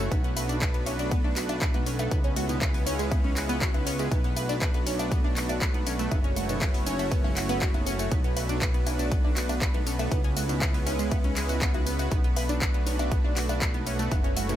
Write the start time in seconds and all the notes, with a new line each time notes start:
Already playing: A3 F#4
0.11 B1 B3 D4 B4, kick, closed hi-hat, tambourine, high bongo, high conga
0.24 B3 B4, closed hi-hat
0.36 B4 B5, open hi-hat, tambourine, high bongo
0.49 D4 D5, closed hi-hat, tambourine, high conga
0.61 B4 B5, kick, clap, closed hi-hat, tambourine, high bongo
0.74 B3 B4, closed hi-hat
0.86 C#4 C#5, open hi-hat, tambourine, high bongo, high conga
0.99 D4 D5, closed hi-hat, tambourine
1.11 B3 B4, kick, closed hi-hat, tambourine
1.24 D4 D5, high bongo, high conga
1.36 F#4 F#5, clap, open hi-hat, tambourine
1.49 D4 D5, closed hi-hat, tambourine, high bongo
1.61 B4 B5, kick, clap, closed hi-hat, tambourine
1.74 B3 B4, closed hi-hat, high bongo, high conga, low conga
1.86 C#4 C#5, open hi-hat, tambourine
1.99 A3 A4, closed hi-hat, tambourine, high bongo
2.11 C#2 G#3 B3 C#4 E4 B4, kick, closed hi-hat, tambourine, high conga
2.24 C#4 C#5, closed hi-hat
2.36 F#4 F#5, open hi-hat, tambourine, high bongo, low conga
2.49 B2 B3, closed hi-hat, tambourine, high conga
2.61 B4 B5, kick, clap, closed hi-hat, tambourine, high bongo
2.74 B3 B4, open hi-hat
2.86 C#4 C#5, open hi-hat, tambourine, high bongo, high conga
2.99 G#3 G#4, closed hi-hat, tambourine
3.11 B3 B4, kick, closed hi-hat, tambourine, high bongo
3.24 C#4 C#5, high conga, low conga
3.36 F#4 F#5, clap, open hi-hat, tambourine
3.49 B3 B4, closed hi-hat, tambourine, high bongo
3.61 F#4 F#5, kick, clap, closed hi-hat, tambourine
3.74 B3 B4, closed hi-hat, high bongo, high conga
3.86 C#4 C#5, open hi-hat, tambourine
3.99 G#3 G#4, closed hi-hat, tambourine, high bongo
4.11 B1 A3 B3 D4 F#4 B4, kick, closed hi-hat, tambourine, high bongo, high conga
4.24 B3 B4, closed hi-hat
4.36 B4 B5, open hi-hat, tambourine, high bongo
4.49 D4 D5, closed hi-hat, tambourine, high conga
4.61 B4 B5, kick, clap, closed hi-hat, tambourine
4.74 B3 B4, closed hi-hat, high bongo
4.86 C#4 C#5, open hi-hat, tambourine, high conga
4.99 D4 D5, closed hi-hat, tambourine, high bongo
5.11 B3 B4, kick, closed hi-hat, tambourine
5.24 D4 D5, high bongo, high conga
5.36 F#4 F#5, clap, open hi-hat, tambourine
5.49 D4 D5, closed hi-hat, tambourine, high bongo
5.61 B4 B5, kick, clap, closed hi-hat, tambourine
5.74 B3 B4, closed hi-hat, high conga, low conga
5.86 C#4 C#5, open hi-hat, tambourine, high bongo
5.99 A3 A4, closed hi-hat, tambourine
6.11 F#1 B3 C#4 E4 B4 C#5, kick, closed hi-hat, tambourine, high bongo, high conga
6.24 C#4 C#5, closed hi-hat
6.36 F#4 F#5, open hi-hat, tambourine, high bongo, low conga
6.49 B2 B3, closed hi-hat, tambourine, high conga
6.61 B4 B5, kick, clap, closed hi-hat, tambourine, high bongo
6.74 B3 B4, open hi-hat
6.86 C#4 C#5, open hi-hat, tambourine, high conga
6.99 A3 A4, closed hi-hat, tambourine, high bongo
7.11 B3 B4, kick, closed hi-hat, tambourine
7.24 C#4 C#5, high bongo, high conga, low conga
7.36 F#4 F#5, clap, open hi-hat, tambourine
7.49 B3 B4, closed hi-hat, tambourine, high bongo
7.61 F#4 F#5, kick, clap, closed hi-hat, tambourine
7.74 B3 B4, closed hi-hat, high bongo, high conga
7.87 C#4 C#5, open hi-hat, tambourine
7.99 A3 A4, closed hi-hat, tambourine
8.12 B1 B3 D4 B4, kick, closed hi-hat, tambourine, high bongo, high conga
8.24 B3 B4, closed hi-hat
8.37 B4 B5, open hi-hat, tambourine, high bongo
8.49 D4 D5, closed hi-hat, tambourine, high conga
8.62 B4 B5, kick, clap, closed hi-hat, tambourine, high bongo
8.74 B3 B4, closed hi-hat
8.87 C#4 C#5, open hi-hat, tambourine, high bongo, high conga
8.99 D4 D5, closed hi-hat, tambourine
9.12 B3 B4, kick, closed hi-hat, tambourine
9.24 D4 D5, high bongo, high conga
9.36 F#4 F#5, clap, open hi-hat, tambourine
9.49 D4 D5, closed hi-hat, tambourine, high bongo
9.61 B4 B5, kick, clap, closed hi-hat, tambourine
9.74 B3 B4, closed hi-hat, high bongo, high conga, low conga
9.86 C#4 C#5, open hi-hat, tambourine
9.99 A3 A4, closed hi-hat, tambourine, high bongo
10.11 C#2 G#3 B3 C#4 E4 B4, kick, closed hi-hat, tambourine, high conga
10.24 C#4 C#5, closed hi-hat
10.37 F#4 F#5, open hi-hat, tambourine, high bongo, low conga
10.49 B2 B3, closed hi-hat, tambourine, high conga
10.62 B4 B5, kick, clap, closed hi-hat, tambourine, high bongo
10.74 B3 B4, open hi-hat
10.87 C#4 C#5, open hi-hat, tambourine, high bongo, high conga
10.99 G#3 G#4, closed hi-hat, tambourine
11.12 B3 B4, kick, closed hi-hat, tambourine, high bongo
11.24 C#4 C#5, closed hi-hat, high conga, low conga
11.36 G#3 G#4, clap, open hi-hat, tambourine
11.49 F#4 F#5, closed hi-hat, tambourine, high bongo
11.61 B3 B4, kick, clap, closed hi-hat, tambourine
11.74 F#4 F#5, closed hi-hat, high bongo, high conga
11.87 B3 B4, open hi-hat, tambourine
11.99 F#4 F#5, closed hi-hat, tambourine, high bongo
12.11 B1 A3 B3 D4 F#4 B4, kick, closed hi-hat, tambourine, high bongo, high conga
12.24 B3 B4, closed hi-hat
12.36 B4 B5, open hi-hat, tambourine, high bongo
12.49 D4 D5, closed hi-hat, tambourine, high conga
12.62 B4 B5, kick, clap, closed hi-hat, tambourine
12.74 B3 B4, closed hi-hat, high bongo
12.87 C#4 C#5, open hi-hat, tambourine, high conga
12.99 D4 D5, closed hi-hat, tambourine, high bongo
13.12 B3 B4, kick, closed hi-hat, tambourine
13.24 D4 D5, high bongo, high conga
13.36 F#4 F#5, clap, open hi-hat, tambourine
13.49 D4 D5, closed hi-hat, tambourine, high bongo
13.62 B4 B5, kick, clap, closed hi-hat, tambourine
13.74 B3 B4, closed hi-hat, high conga, low conga
13.87 C#4 C#5, open hi-hat, tambourine, high bongo
13.99 A3 A4, closed hi-hat, tambourine
14.11 F#1 B3 C#4 E4 B4 C#5, kick, closed hi-hat, tambourine, high bongo, high conga
14.24 C#4 C#5, closed hi-hat
14.36 F#4 F#5, open hi-hat, tambourine, high bongo, low conga
14.49 B2 B3, closed hi-hat, tambourine, high conga